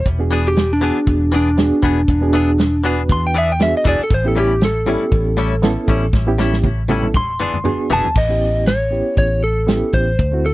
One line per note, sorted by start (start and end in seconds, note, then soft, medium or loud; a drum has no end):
0.06 0.90 E1 medium
0.06 kick loud
0.06 closed hi-hat medium
0.19 0.59 B3 medium
0.19 0.59 D4 medium
0.19 0.60 F#4 medium
0.19 0.60 G#4 medium
0.31 0.47 E3 medium
0.31 0.48 B3 medium
0.31 0.48 D4 medium
0.31 0.48 G#4 medium
0.48 0.71 G4 medium
0.56 snare loud
0.56 closed hi-hat medium
0.73 1.32 D4 medium
0.80 0.98 E3 medium
0.80 1.30 B3 medium
0.80 0.98 B3 medium
0.80 1.31 D4 medium
0.80 0.99 D4 medium
0.80 1.31 F#4 medium
0.80 1.31 G#4 medium
0.80 0.99 G#4 medium
1.07 1.71 E1 loud
1.07 kick loud
1.07 closed hi-hat medium
1.32 1.48 E3 medium
1.32 1.49 B3 medium
1.32 1.49 D4 medium
1.32 2.82 D4 loud
1.32 1.50 G#4 medium
1.57 1.99 B3 medium
1.57 1.99 D4 medium
1.57 2.00 F#4 medium
1.57 2.00 G#4 medium
1.57 snare loud
1.57 closed hi-hat medium
1.83 2.04 E1 medium
1.83 1.99 E3 medium
1.83 2.00 B3 medium
1.83 2.00 D4 medium
1.83 2.00 G#4 medium
1.83 kick medium
2.08 3.11 E1 loud
2.08 kick loud
2.08 closed hi-hat medium
2.21 2.62 B3 medium
2.21 2.62 D4 medium
2.21 2.62 F#4 medium
2.21 2.62 G#4 loud
2.33 2.50 E3 medium
2.33 2.50 B3 medium
2.33 2.51 D4 medium
2.33 2.51 G#4 medium
2.59 snare loud
2.59 closed hi-hat medium
2.83 3.00 E3 medium
2.83 3.33 B3 medium
2.83 3.01 B3 medium
2.83 3.33 D4 medium
2.83 3.01 D4 medium
2.83 3.34 F#4 medium
2.83 3.01 G#4 medium
2.83 3.34 B4 medium
3.09 3.73 E2 loud
3.09 3.25 C6 loud
3.09 kick loud
3.09 closed hi-hat medium
3.27 3.36 G5 medium
3.34 3.51 E3 medium
3.34 3.51 B3 medium
3.34 3.52 D4 medium
3.34 3.52 G#4 medium
3.34 3.50 E5 loud
3.52 3.62 G5 medium
3.59 4.02 B3 medium
3.59 4.02 D4 medium
3.59 4.02 F#4 medium
3.59 4.03 G#4 medium
3.59 3.75 E5 medium
3.59 snare loud
3.59 closed hi-hat medium
3.77 3.87 D#5 loud
3.85 3.97 E1 medium
3.85 4.01 E3 medium
3.85 4.02 B3 medium
3.85 4.02 D4 medium
3.85 4.03 G#4 medium
3.85 4.01 D5 loud
3.85 kick medium
3.99 muted fingered electric bass stroke soft
4.03 4.13 A4 loud
4.11 4.95 A1 loud
4.11 4.26 C5 loud
4.11 kick loud
4.11 closed hi-hat medium
4.24 4.64 B3 medium
4.24 4.65 C#4 medium
4.24 4.65 E4 medium
4.24 4.65 G4 medium
4.24 4.37 A4 medium
4.36 4.52 A2 medium
4.36 4.53 G3 medium
4.36 4.53 C#4 medium
4.36 4.53 E4 medium
4.40 4.63 G4 loud
4.61 6.11 A4 loud
4.61 snare loud
4.61 closed hi-hat medium
4.86 5.03 A2 medium
4.86 5.03 G3 medium
4.86 5.35 B3 medium
4.86 5.36 C#4 medium
4.86 5.04 C#4 medium
4.86 5.36 E4 medium
4.86 5.04 E4 loud
4.86 5.36 G4 medium
5.12 5.76 A1 loud
5.12 kick loud
5.12 closed hi-hat medium
5.37 5.54 A2 medium
5.37 5.54 G3 loud
5.37 5.54 C#4 loud
5.37 5.55 E4 medium
5.62 6.04 B3 loud
5.62 6.05 C#4 loud
5.62 6.05 E4 loud
5.62 6.05 A4 loud
5.62 snare loud
5.62 closed hi-hat medium
5.88 6.09 A1 medium
5.88 6.04 A2 medium
5.88 6.05 G3 medium
5.88 6.05 C#4 medium
5.88 6.05 E4 medium
5.88 kick medium
6.13 7.15 A1 loud
6.13 kick loud
6.13 snare medium
6.27 6.67 B3 medium
6.27 6.67 C#4 medium
6.27 6.67 E4 medium
6.27 6.68 G4 loud
6.38 6.55 A2 medium
6.38 6.55 G3 medium
6.38 6.56 C#4 medium
6.38 6.56 E4 loud
6.38 snare medium
6.53 snare medium
6.63 kick medium
6.63 high tom medium
6.88 7.05 A2 medium
6.88 7.06 G3 medium
6.88 7.14 B3 medium
6.88 7.15 C#4 medium
6.88 7.06 C#4 medium
6.88 7.15 E4 medium
6.88 7.07 E4 loud
6.88 7.15 A4 loud
6.88 high tom medium
7.03 mid tom medium
7.14 7.78 E1 loud
7.14 7.90 C6 loud
7.14 kick loud
7.14 mid tom medium
7.40 7.56 E3 medium
7.40 7.56 B3 medium
7.40 7.57 D4 medium
7.40 7.57 G#4 medium
7.40 mid tom medium
7.54 mid tom medium
7.64 8.07 B3 medium
7.64 8.07 D4 medium
7.64 8.07 F#4 medium
7.64 8.07 G#4 loud
7.64 mid tom medium
7.90 8.03 E1 medium
7.90 8.07 E3 medium
7.90 8.07 B3 medium
7.90 8.08 D4 medium
7.90 8.08 G#4 medium
7.90 8.17 A5 loud
7.90 floor tom loud
8.04 muted fingered electric bass stroke soft
8.04 floor tom medium
8.16 9.01 A1 medium
8.16 8.64 D#5 medium
8.16 kick loud
8.16 crash medium
8.29 8.70 B3 medium
8.29 8.70 C#4 medium
8.29 8.70 E4 medium
8.29 8.70 G4 medium
8.66 9.17 C#5 medium
8.66 snare loud
8.66 closed hi-hat medium
8.90 9.41 B3 medium
8.90 9.41 C#4 medium
8.90 9.41 E4 medium
8.90 9.42 G4 medium
9.17 9.81 A1 medium
9.17 9.42 C#5 medium
9.17 kick medium
9.17 closed hi-hat medium
9.44 9.96 A4 medium
9.67 10.10 B3 medium
9.67 10.10 C#4 medium
9.67 10.10 E4 medium
9.67 10.10 G4 medium
9.67 snare loud
9.67 closed hi-hat medium
9.93 10.15 A1 medium
9.93 10.46 C5 medium
9.93 kick medium
10.19 10.54 D2 loud
10.19 kick loud
10.19 closed hi-hat medium
10.32 10.54 A3 medium
10.32 10.54 C4 medium
10.32 10.54 E4 medium
10.32 10.54 F#4 medium
10.46 10.54 A4 medium